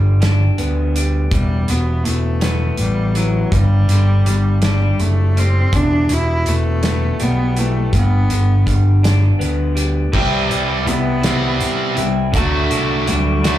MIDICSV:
0, 0, Header, 1, 6, 480
1, 0, Start_track
1, 0, Tempo, 734394
1, 864, Time_signature, 6, 3, 24, 8
1, 8878, End_track
2, 0, Start_track
2, 0, Title_t, "Cello"
2, 0, Program_c, 0, 42
2, 860, Note_on_c, 0, 55, 82
2, 1111, Note_on_c, 0, 59, 73
2, 1121, Note_off_c, 0, 55, 0
2, 1334, Note_on_c, 0, 57, 79
2, 1343, Note_off_c, 0, 59, 0
2, 1819, Note_off_c, 0, 57, 0
2, 1832, Note_on_c, 0, 55, 80
2, 2070, Note_on_c, 0, 54, 76
2, 2079, Note_off_c, 0, 55, 0
2, 2310, Note_on_c, 0, 55, 96
2, 2320, Note_off_c, 0, 54, 0
2, 3027, Note_off_c, 0, 55, 0
2, 3033, Note_on_c, 0, 55, 83
2, 3271, Note_on_c, 0, 57, 86
2, 3281, Note_off_c, 0, 55, 0
2, 3525, Note_on_c, 0, 60, 99
2, 3535, Note_off_c, 0, 57, 0
2, 3761, Note_on_c, 0, 62, 98
2, 3770, Note_off_c, 0, 60, 0
2, 4005, Note_on_c, 0, 64, 92
2, 4015, Note_off_c, 0, 62, 0
2, 4239, Note_on_c, 0, 57, 102
2, 4249, Note_off_c, 0, 64, 0
2, 4725, Note_on_c, 0, 59, 96
2, 4735, Note_off_c, 0, 57, 0
2, 4962, Note_on_c, 0, 57, 89
2, 4972, Note_off_c, 0, 59, 0
2, 5194, Note_off_c, 0, 57, 0
2, 5205, Note_on_c, 0, 59, 88
2, 5709, Note_off_c, 0, 59, 0
2, 6634, Note_on_c, 0, 55, 90
2, 7103, Note_on_c, 0, 59, 115
2, 7113, Note_off_c, 0, 55, 0
2, 7825, Note_off_c, 0, 59, 0
2, 8065, Note_on_c, 0, 57, 92
2, 8550, Note_on_c, 0, 55, 80
2, 8559, Note_off_c, 0, 57, 0
2, 8793, Note_on_c, 0, 54, 95
2, 8802, Note_off_c, 0, 55, 0
2, 8878, Note_off_c, 0, 54, 0
2, 8878, End_track
3, 0, Start_track
3, 0, Title_t, "Clean electric guitar"
3, 0, Program_c, 1, 27
3, 0, Note_on_c, 1, 43, 74
3, 0, Note_on_c, 1, 50, 67
3, 0, Note_on_c, 1, 55, 62
3, 139, Note_on_c, 1, 62, 59
3, 381, Note_on_c, 1, 59, 65
3, 620, Note_off_c, 1, 43, 0
3, 624, Note_off_c, 1, 55, 0
3, 627, Note_on_c, 1, 55, 63
3, 859, Note_off_c, 1, 50, 0
3, 861, Note_off_c, 1, 62, 0
3, 863, Note_on_c, 1, 40, 70
3, 1111, Note_on_c, 1, 47, 67
3, 1345, Note_off_c, 1, 55, 0
3, 1347, Note_on_c, 1, 52, 57
3, 1584, Note_off_c, 1, 59, 0
3, 1584, Note_on_c, 1, 59, 65
3, 2059, Note_off_c, 1, 52, 0
3, 2064, Note_off_c, 1, 40, 0
3, 2067, Note_on_c, 1, 52, 61
3, 2305, Note_off_c, 1, 52, 0
3, 2308, Note_off_c, 1, 47, 0
3, 2311, Note_on_c, 1, 43, 70
3, 2554, Note_on_c, 1, 50, 63
3, 2788, Note_on_c, 1, 55, 64
3, 3029, Note_off_c, 1, 59, 0
3, 3031, Note_on_c, 1, 62, 57
3, 3508, Note_off_c, 1, 43, 0
3, 3509, Note_off_c, 1, 55, 0
3, 3512, Note_on_c, 1, 55, 65
3, 3747, Note_on_c, 1, 40, 75
3, 3748, Note_off_c, 1, 62, 0
3, 3750, Note_off_c, 1, 50, 0
3, 3981, Note_on_c, 1, 47, 69
3, 4229, Note_off_c, 1, 55, 0
3, 4232, Note_on_c, 1, 52, 64
3, 4470, Note_on_c, 1, 59, 65
3, 4707, Note_on_c, 1, 55, 62
3, 4944, Note_off_c, 1, 52, 0
3, 4947, Note_off_c, 1, 40, 0
3, 4952, Note_on_c, 1, 52, 61
3, 5184, Note_off_c, 1, 47, 0
3, 5188, Note_off_c, 1, 59, 0
3, 5189, Note_off_c, 1, 52, 0
3, 5194, Note_on_c, 1, 43, 74
3, 5422, Note_on_c, 1, 50, 63
3, 5660, Note_off_c, 1, 55, 0
3, 5660, Note_on_c, 1, 55, 57
3, 5904, Note_on_c, 1, 62, 60
3, 6138, Note_on_c, 1, 59, 66
3, 6368, Note_off_c, 1, 55, 0
3, 6376, Note_on_c, 1, 55, 63
3, 6390, Note_off_c, 1, 43, 0
3, 6613, Note_off_c, 1, 50, 0
3, 6616, Note_on_c, 1, 48, 94
3, 6617, Note_off_c, 1, 55, 0
3, 6620, Note_on_c, 1, 52, 87
3, 6622, Note_off_c, 1, 59, 0
3, 6625, Note_off_c, 1, 62, 0
3, 6626, Note_on_c, 1, 55, 89
3, 6632, Note_on_c, 1, 60, 99
3, 6637, Note_on_c, 1, 64, 97
3, 6848, Note_off_c, 1, 64, 0
3, 6856, Note_on_c, 1, 64, 61
3, 6872, Note_off_c, 1, 55, 0
3, 6880, Note_on_c, 1, 55, 54
3, 7090, Note_off_c, 1, 52, 0
3, 7098, Note_on_c, 1, 52, 69
3, 7101, Note_off_c, 1, 48, 0
3, 7102, Note_off_c, 1, 55, 0
3, 7109, Note_off_c, 1, 60, 0
3, 7109, Note_on_c, 1, 55, 68
3, 7115, Note_off_c, 1, 64, 0
3, 7123, Note_on_c, 1, 64, 78
3, 7323, Note_off_c, 1, 64, 0
3, 7331, Note_on_c, 1, 64, 84
3, 7338, Note_off_c, 1, 55, 0
3, 7341, Note_off_c, 1, 52, 0
3, 7346, Note_on_c, 1, 55, 65
3, 7349, Note_on_c, 1, 52, 58
3, 7354, Note_on_c, 1, 48, 66
3, 7802, Note_off_c, 1, 64, 0
3, 7810, Note_on_c, 1, 64, 65
3, 7826, Note_off_c, 1, 55, 0
3, 7828, Note_on_c, 1, 60, 60
3, 7834, Note_on_c, 1, 55, 61
3, 8044, Note_off_c, 1, 64, 0
3, 8049, Note_off_c, 1, 52, 0
3, 8051, Note_on_c, 1, 50, 77
3, 8053, Note_off_c, 1, 60, 0
3, 8055, Note_off_c, 1, 55, 0
3, 8056, Note_off_c, 1, 48, 0
3, 8060, Note_on_c, 1, 57, 87
3, 8068, Note_on_c, 1, 62, 100
3, 8078, Note_on_c, 1, 66, 95
3, 8290, Note_off_c, 1, 66, 0
3, 8298, Note_on_c, 1, 66, 76
3, 8309, Note_off_c, 1, 62, 0
3, 8312, Note_on_c, 1, 62, 67
3, 8317, Note_off_c, 1, 57, 0
3, 8325, Note_on_c, 1, 57, 56
3, 8529, Note_off_c, 1, 50, 0
3, 8537, Note_on_c, 1, 50, 71
3, 8539, Note_off_c, 1, 57, 0
3, 8547, Note_on_c, 1, 57, 72
3, 8551, Note_off_c, 1, 66, 0
3, 8555, Note_off_c, 1, 62, 0
3, 8558, Note_on_c, 1, 62, 74
3, 8559, Note_on_c, 1, 66, 79
3, 8773, Note_off_c, 1, 66, 0
3, 8781, Note_on_c, 1, 66, 81
3, 8791, Note_off_c, 1, 62, 0
3, 8793, Note_off_c, 1, 57, 0
3, 8793, Note_on_c, 1, 62, 79
3, 8798, Note_off_c, 1, 50, 0
3, 8801, Note_on_c, 1, 57, 67
3, 8806, Note_on_c, 1, 50, 69
3, 8878, Note_off_c, 1, 50, 0
3, 8878, Note_off_c, 1, 57, 0
3, 8878, Note_off_c, 1, 62, 0
3, 8878, Note_off_c, 1, 66, 0
3, 8878, End_track
4, 0, Start_track
4, 0, Title_t, "Distorted electric guitar"
4, 0, Program_c, 2, 30
4, 7114, Note_on_c, 2, 48, 71
4, 7326, Note_off_c, 2, 48, 0
4, 7356, Note_on_c, 2, 60, 102
4, 7817, Note_off_c, 2, 60, 0
4, 7833, Note_on_c, 2, 48, 64
4, 8046, Note_off_c, 2, 48, 0
4, 8075, Note_on_c, 2, 54, 86
4, 8536, Note_off_c, 2, 54, 0
4, 8550, Note_on_c, 2, 54, 72
4, 8764, Note_off_c, 2, 54, 0
4, 8791, Note_on_c, 2, 54, 83
4, 8878, Note_off_c, 2, 54, 0
4, 8878, End_track
5, 0, Start_track
5, 0, Title_t, "Picked electric bass"
5, 0, Program_c, 3, 34
5, 0, Note_on_c, 3, 31, 85
5, 315, Note_off_c, 3, 31, 0
5, 388, Note_on_c, 3, 38, 80
5, 800, Note_off_c, 3, 38, 0
5, 860, Note_on_c, 3, 28, 84
5, 1068, Note_off_c, 3, 28, 0
5, 1109, Note_on_c, 3, 28, 74
5, 1314, Note_off_c, 3, 28, 0
5, 1346, Note_on_c, 3, 28, 87
5, 1759, Note_off_c, 3, 28, 0
5, 1826, Note_on_c, 3, 33, 82
5, 2239, Note_off_c, 3, 33, 0
5, 2300, Note_on_c, 3, 31, 82
5, 2509, Note_off_c, 3, 31, 0
5, 2542, Note_on_c, 3, 31, 82
5, 2750, Note_off_c, 3, 31, 0
5, 2781, Note_on_c, 3, 31, 87
5, 3197, Note_off_c, 3, 31, 0
5, 3272, Note_on_c, 3, 30, 81
5, 3683, Note_off_c, 3, 30, 0
5, 3747, Note_on_c, 3, 28, 85
5, 3953, Note_off_c, 3, 28, 0
5, 3989, Note_on_c, 3, 28, 83
5, 4195, Note_off_c, 3, 28, 0
5, 4229, Note_on_c, 3, 28, 82
5, 4642, Note_off_c, 3, 28, 0
5, 4719, Note_on_c, 3, 35, 74
5, 5127, Note_off_c, 3, 35, 0
5, 5182, Note_on_c, 3, 31, 93
5, 5391, Note_off_c, 3, 31, 0
5, 5433, Note_on_c, 3, 31, 74
5, 5637, Note_off_c, 3, 31, 0
5, 5665, Note_on_c, 3, 31, 81
5, 6080, Note_off_c, 3, 31, 0
5, 6145, Note_on_c, 3, 38, 86
5, 6560, Note_off_c, 3, 38, 0
5, 6625, Note_on_c, 3, 36, 82
5, 6815, Note_off_c, 3, 36, 0
5, 6874, Note_on_c, 3, 36, 76
5, 7061, Note_off_c, 3, 36, 0
5, 7107, Note_on_c, 3, 36, 91
5, 7297, Note_off_c, 3, 36, 0
5, 7349, Note_on_c, 3, 36, 75
5, 7538, Note_off_c, 3, 36, 0
5, 7593, Note_on_c, 3, 48, 76
5, 7780, Note_off_c, 3, 48, 0
5, 7829, Note_on_c, 3, 36, 88
5, 8018, Note_off_c, 3, 36, 0
5, 8062, Note_on_c, 3, 38, 89
5, 8254, Note_off_c, 3, 38, 0
5, 8312, Note_on_c, 3, 36, 81
5, 8499, Note_off_c, 3, 36, 0
5, 8555, Note_on_c, 3, 38, 93
5, 8741, Note_off_c, 3, 38, 0
5, 8788, Note_on_c, 3, 38, 88
5, 8878, Note_off_c, 3, 38, 0
5, 8878, End_track
6, 0, Start_track
6, 0, Title_t, "Drums"
6, 143, Note_on_c, 9, 42, 75
6, 149, Note_on_c, 9, 38, 103
6, 208, Note_off_c, 9, 42, 0
6, 214, Note_off_c, 9, 38, 0
6, 381, Note_on_c, 9, 42, 63
6, 446, Note_off_c, 9, 42, 0
6, 626, Note_on_c, 9, 42, 63
6, 691, Note_off_c, 9, 42, 0
6, 859, Note_on_c, 9, 36, 98
6, 859, Note_on_c, 9, 42, 80
6, 924, Note_off_c, 9, 42, 0
6, 925, Note_off_c, 9, 36, 0
6, 1099, Note_on_c, 9, 42, 66
6, 1164, Note_off_c, 9, 42, 0
6, 1342, Note_on_c, 9, 42, 62
6, 1408, Note_off_c, 9, 42, 0
6, 1577, Note_on_c, 9, 42, 88
6, 1583, Note_on_c, 9, 38, 97
6, 1642, Note_off_c, 9, 42, 0
6, 1648, Note_off_c, 9, 38, 0
6, 1814, Note_on_c, 9, 42, 57
6, 1879, Note_off_c, 9, 42, 0
6, 2059, Note_on_c, 9, 42, 60
6, 2125, Note_off_c, 9, 42, 0
6, 2300, Note_on_c, 9, 36, 106
6, 2300, Note_on_c, 9, 42, 75
6, 2366, Note_off_c, 9, 36, 0
6, 2366, Note_off_c, 9, 42, 0
6, 2542, Note_on_c, 9, 42, 56
6, 2607, Note_off_c, 9, 42, 0
6, 2785, Note_on_c, 9, 42, 60
6, 2851, Note_off_c, 9, 42, 0
6, 3018, Note_on_c, 9, 42, 81
6, 3024, Note_on_c, 9, 38, 104
6, 3083, Note_off_c, 9, 42, 0
6, 3089, Note_off_c, 9, 38, 0
6, 3265, Note_on_c, 9, 42, 57
6, 3330, Note_off_c, 9, 42, 0
6, 3511, Note_on_c, 9, 42, 58
6, 3576, Note_off_c, 9, 42, 0
6, 3744, Note_on_c, 9, 36, 107
6, 3746, Note_on_c, 9, 42, 76
6, 3809, Note_off_c, 9, 36, 0
6, 3811, Note_off_c, 9, 42, 0
6, 3982, Note_on_c, 9, 42, 60
6, 4047, Note_off_c, 9, 42, 0
6, 4222, Note_on_c, 9, 42, 60
6, 4288, Note_off_c, 9, 42, 0
6, 4462, Note_on_c, 9, 42, 81
6, 4468, Note_on_c, 9, 38, 101
6, 4528, Note_off_c, 9, 42, 0
6, 4534, Note_off_c, 9, 38, 0
6, 4703, Note_on_c, 9, 42, 62
6, 4769, Note_off_c, 9, 42, 0
6, 4945, Note_on_c, 9, 42, 61
6, 5010, Note_off_c, 9, 42, 0
6, 5183, Note_on_c, 9, 36, 93
6, 5183, Note_on_c, 9, 42, 84
6, 5248, Note_off_c, 9, 36, 0
6, 5248, Note_off_c, 9, 42, 0
6, 5425, Note_on_c, 9, 42, 66
6, 5491, Note_off_c, 9, 42, 0
6, 5665, Note_on_c, 9, 36, 68
6, 5670, Note_on_c, 9, 42, 63
6, 5731, Note_off_c, 9, 36, 0
6, 5736, Note_off_c, 9, 42, 0
6, 5911, Note_on_c, 9, 42, 81
6, 5917, Note_on_c, 9, 38, 104
6, 5976, Note_off_c, 9, 42, 0
6, 5982, Note_off_c, 9, 38, 0
6, 6152, Note_on_c, 9, 42, 58
6, 6217, Note_off_c, 9, 42, 0
6, 6384, Note_on_c, 9, 42, 69
6, 6449, Note_off_c, 9, 42, 0
6, 6624, Note_on_c, 9, 36, 99
6, 6628, Note_on_c, 9, 49, 95
6, 6689, Note_off_c, 9, 36, 0
6, 6694, Note_off_c, 9, 49, 0
6, 6868, Note_on_c, 9, 42, 62
6, 6934, Note_off_c, 9, 42, 0
6, 7107, Note_on_c, 9, 42, 64
6, 7173, Note_off_c, 9, 42, 0
6, 7343, Note_on_c, 9, 42, 91
6, 7349, Note_on_c, 9, 38, 108
6, 7408, Note_off_c, 9, 42, 0
6, 7414, Note_off_c, 9, 38, 0
6, 7585, Note_on_c, 9, 42, 65
6, 7650, Note_off_c, 9, 42, 0
6, 7822, Note_on_c, 9, 42, 75
6, 7887, Note_off_c, 9, 42, 0
6, 8063, Note_on_c, 9, 36, 100
6, 8064, Note_on_c, 9, 42, 92
6, 8129, Note_off_c, 9, 36, 0
6, 8130, Note_off_c, 9, 42, 0
6, 8306, Note_on_c, 9, 42, 68
6, 8371, Note_off_c, 9, 42, 0
6, 8546, Note_on_c, 9, 42, 72
6, 8611, Note_off_c, 9, 42, 0
6, 8787, Note_on_c, 9, 42, 88
6, 8793, Note_on_c, 9, 38, 105
6, 8852, Note_off_c, 9, 42, 0
6, 8858, Note_off_c, 9, 38, 0
6, 8878, End_track
0, 0, End_of_file